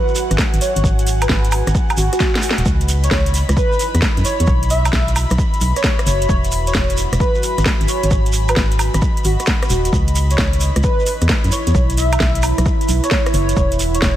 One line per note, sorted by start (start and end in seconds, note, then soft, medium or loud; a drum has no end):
0.00 3.40 F#4 medium
0.00 0.31 B4 loud
0.00 0.84 E5 loud
0.00 2.67 F#5 medium
0.00 3.40 G#5 medium
0.08 shekere soft
0.15 open hi-hat loud
0.15 shekere medium
0.31 0.37 G#1 loud
0.31 cross-stick soft
0.31 closed hi-hat medium
0.31 shekere soft
0.38 kick loud
0.38 snare loud
0.38 shekere medium
0.54 0.59 G#1 medium
0.54 closed hi-hat soft
0.54 shekere soft
0.61 0.71 C#5 medium
0.61 open hi-hat loud
0.61 shekere medium
0.76 0.82 G#1 medium
0.76 0.81 C#5 medium
0.76 closed hi-hat medium
0.76 shekere soft
0.84 1.27 G#1 loud
0.84 kick loud
0.84 shekere soft
0.99 closed hi-hat medium
0.99 shekere soft
1.07 open hi-hat loud
1.07 shekere medium
1.13 3.40 B4 medium
1.22 1.40 B4 medium
1.22 4.47 D#5 medium
1.22 closed hi-hat medium
1.22 high woodblock medium
1.22 shekere soft
1.29 1.62 G#1 medium
1.29 kick loud
1.29 snare loud
1.29 shekere soft
1.45 closed hi-hat medium
1.45 shekere soft
1.52 open hi-hat loud
1.52 high woodblock medium
1.52 shekere medium
1.67 1.73 G#1 loud
1.67 cross-stick medium
1.67 closed hi-hat medium
1.67 shekere soft
1.75 kick loud
1.75 shekere soft
1.89 closed hi-hat soft
1.89 high woodblock medium
1.89 shekere soft
1.97 2.09 G#1 medium
1.97 2.10 F#4 medium
1.97 open hi-hat loud
1.97 shekere medium
2.13 2.17 F#4 medium
2.13 cross-stick soft
2.13 closed hi-hat medium
2.13 shekere soft
2.20 2.30 F#4 medium
2.20 kick loud
2.20 snare medium
2.20 shekere medium
2.35 snare medium
2.35 closed hi-hat soft
2.35 shekere soft
2.42 2.53 F#4 medium
2.42 open hi-hat loud
2.42 shekere loud
2.51 snare loud
2.58 2.64 D#1 medium
2.58 2.63 F#4 medium
2.58 closed hi-hat medium
2.58 shekere soft
2.66 3.08 C#2 loud
2.66 5.22 E4 loud
2.66 14.16 B5 medium
2.66 kick loud
2.66 shekere medium
2.81 5.22 C#5 medium
2.81 closed hi-hat soft
2.81 shekere soft
2.88 open hi-hat loud
2.88 shekere medium
3.04 3.22 C#5 medium
3.04 5.14 B5 medium
3.04 closed hi-hat medium
3.04 shekere soft
3.11 3.44 C#2 medium
3.11 kick loud
3.11 snare loud
3.11 shekere medium
3.26 closed hi-hat medium
3.26 shekere soft
3.34 open hi-hat loud
3.34 shekere medium
3.49 3.55 C#2 loud
3.49 cross-stick medium
3.49 closed hi-hat medium
3.49 shekere soft
3.57 3.95 B4 medium
3.57 kick loud
3.57 shekere soft
3.72 shekere soft
3.79 open hi-hat loud
3.79 shekere medium
3.94 4.00 E2 loud
3.94 cross-stick soft
3.94 closed hi-hat medium
3.94 shekere soft
4.02 kick loud
4.02 snare loud
4.02 shekere medium
4.17 4.23 F#2 medium
4.17 closed hi-hat soft
4.17 shekere soft
4.25 4.34 C#5 medium
4.25 open hi-hat loud
4.25 shekere medium
4.40 4.46 E2 medium
4.40 4.45 C#5 medium
4.40 closed hi-hat medium
4.40 shekere soft
4.47 4.90 B1 loud
4.47 10.67 F#4 medium
4.47 kick loud
4.47 shekere medium
4.63 closed hi-hat medium
4.63 shekere soft
4.70 7.04 B4 medium
4.70 4.82 E5 loud
4.70 open hi-hat loud
4.70 shekere loud
4.85 5.04 E5 loud
4.85 closed hi-hat medium
4.85 high woodblock medium
4.85 shekere soft
4.93 5.25 B1 medium
4.93 kick loud
4.93 snare loud
4.93 shekere medium
4.99 8.11 E5 medium
5.07 closed hi-hat medium
5.07 shekere soft
5.16 open hi-hat loud
5.16 high woodblock medium
5.16 shekere loud
5.30 5.37 B1 loud
5.30 cross-stick medium
5.30 closed hi-hat medium
5.30 shekere soft
5.38 kick loud
5.38 shekere medium
5.54 closed hi-hat soft
5.54 shekere soft
5.61 5.73 B1 medium
5.61 open hi-hat loud
5.61 shekere loud
5.76 5.81 C#5 medium
5.76 cross-stick soft
5.76 closed hi-hat medium
5.76 shekere soft
5.84 5.94 C#5 medium
5.84 kick loud
5.84 snare loud
5.84 shekere medium
5.99 cross-stick medium
5.99 closed hi-hat soft
5.99 shekere soft
6.06 6.26 F#1 loud
6.06 6.35 C#5 loud
6.06 open hi-hat loud
6.06 shekere loud
6.21 closed hi-hat medium
6.21 shekere soft
6.29 6.72 E1 loud
6.29 kick loud
6.29 shekere medium
6.44 closed hi-hat medium
6.44 shekere soft
6.51 10.67 G#5 medium
6.51 open hi-hat loud
6.51 shekere loud
6.67 6.85 C#5 loud
6.67 closed hi-hat medium
6.67 shekere soft
6.74 7.07 E1 medium
6.74 kick loud
6.74 snare loud
6.74 shekere medium
6.90 closed hi-hat medium
6.90 shekere soft
6.97 open hi-hat loud
6.97 shekere medium
7.12 7.18 E1 loud
7.12 cross-stick medium
7.12 closed hi-hat medium
7.12 shekere soft
7.20 7.58 B4 medium
7.20 kick loud
7.20 shekere medium
7.35 shekere soft
7.43 open hi-hat loud
7.43 shekere loud
7.58 7.64 G#1 loud
7.58 cross-stick soft
7.58 closed hi-hat medium
7.58 shekere soft
7.66 kick loud
7.66 snare loud
7.66 shekere medium
7.81 7.87 G#1 medium
7.81 closed hi-hat soft
7.81 shekere soft
7.88 7.98 C#5 medium
7.88 open hi-hat loud
7.88 shekere medium
8.03 8.09 G#1 medium
8.03 8.08 C#5 medium
8.03 closed hi-hat medium
8.03 shekere soft
8.11 8.54 G#1 loud
8.11 kick loud
8.11 shekere medium
8.23 12.49 D#5 medium
8.23 closed hi-hat medium
8.23 shekere soft
8.30 10.67 B4 medium
8.30 open hi-hat loud
8.30 shekere medium
8.48 8.67 B4 medium
8.48 closed hi-hat medium
8.48 high woodblock medium
8.48 shekere soft
8.56 8.89 G#1 medium
8.56 kick loud
8.56 snare loud
8.56 shekere medium
8.71 closed hi-hat medium
8.71 shekere soft
8.79 open hi-hat loud
8.79 high woodblock medium
8.79 shekere medium
8.94 9.00 G#1 loud
8.94 cross-stick medium
8.94 closed hi-hat medium
8.94 shekere soft
9.02 kick loud
9.02 shekere medium
9.17 closed hi-hat soft
9.17 shekere soft
9.24 9.37 G#1 medium
9.24 9.37 F#4 medium
9.24 open hi-hat loud
9.24 shekere medium
9.40 9.45 F#4 loud
9.40 cross-stick soft
9.40 closed hi-hat medium
9.40 shekere soft
9.46 9.57 F#4 medium
9.46 kick loud
9.46 snare loud
9.46 shekere medium
9.62 cross-stick medium
9.62 closed hi-hat soft
9.62 shekere soft
9.70 9.90 D#1 loud
9.70 9.80 F#4 medium
9.70 open hi-hat loud
9.70 shekere loud
9.85 9.90 F#4 medium
9.85 closed hi-hat medium
9.85 shekere soft
9.93 10.36 C#2 loud
9.93 14.16 E4 loud
9.93 kick loud
9.93 shekere medium
10.07 12.49 B5 medium
10.07 closed hi-hat medium
10.07 shekere soft
10.16 open hi-hat loud
10.16 shekere medium
10.26 12.49 C#5 medium
10.30 10.49 C#5 medium
10.30 closed hi-hat medium
10.30 shekere soft
10.38 10.71 C#2 medium
10.38 kick loud
10.38 snare loud
10.38 shekere soft
10.53 closed hi-hat medium
10.53 shekere soft
10.60 open hi-hat loud
10.60 shekere medium
10.76 10.82 C#2 loud
10.76 cross-stick medium
10.76 closed hi-hat medium
10.76 shekere soft
10.83 11.22 B4 medium
10.83 kick loud
10.83 shekere medium
10.99 shekere soft
11.06 open hi-hat loud
11.06 shekere medium
11.21 11.28 E2 medium
11.21 cross-stick soft
11.21 closed hi-hat medium
11.21 shekere soft
11.29 kick loud
11.29 snare loud
11.29 shekere medium
11.44 11.50 F#2 medium
11.44 closed hi-hat soft
11.44 shekere soft
11.52 11.62 C#5 medium
11.52 open hi-hat loud
11.52 shekere loud
11.67 11.73 E2 medium
11.67 11.72 C#5 medium
11.67 closed hi-hat medium
11.67 shekere soft
11.75 12.18 B1 loud
11.75 kick loud
11.75 shekere medium
11.89 14.16 B4 medium
11.89 closed hi-hat medium
11.89 shekere soft
11.94 12.10 E5 loud
11.94 13.57 A5 medium
11.94 open hi-hat loud
11.94 shekere medium
12.12 12.31 E5 medium
12.12 closed hi-hat medium
12.12 high woodblock medium
12.12 shekere soft
12.20 12.53 B1 medium
12.20 kick loud
12.20 snare loud
12.20 shekere soft
12.35 closed hi-hat medium
12.35 shekere soft
12.42 14.16 F#5 loud
12.42 open hi-hat loud
12.42 high woodblock medium
12.42 shekere medium
12.58 12.64 B1 loud
12.58 cross-stick medium
12.58 closed hi-hat medium
12.58 shekere soft
12.65 kick loud
12.65 shekere soft
12.81 closed hi-hat soft
12.81 shekere soft
12.89 13.00 B1 medium
12.89 open hi-hat loud
12.89 shekere loud
13.04 13.08 C#5 loud
13.04 cross-stick soft
13.04 closed hi-hat medium
13.04 shekere soft
13.11 13.21 C#5 medium
13.11 kick loud
13.11 snare loud
13.11 shekere medium
13.26 cross-stick medium
13.26 closed hi-hat soft
13.26 shekere soft
13.34 13.53 F#1 loud
13.34 13.63 C#5 loud
13.34 open hi-hat loud
13.34 shekere medium
13.49 closed hi-hat medium
13.49 shekere soft
13.56 13.99 E1 loud
13.56 kick loud
13.56 shekere medium
13.72 closed hi-hat medium
13.72 shekere soft
13.79 open hi-hat loud
13.79 shekere medium
13.94 14.13 C#5 loud
13.94 closed hi-hat medium
13.94 shekere soft
14.02 14.16 E1 medium
14.02 kick loud
14.02 snare loud
14.02 shekere medium